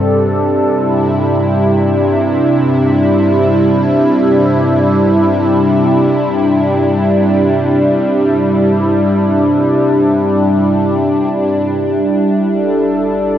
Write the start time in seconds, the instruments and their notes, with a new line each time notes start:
Already playing: analog synth pad G2 C3 G3 C4 A4
0.00 analog synth pad D4
0.74 analog synth pad E4
11.73 sub bass G1
12.50 analog synth pad A4
13.34 analog synth pad A#4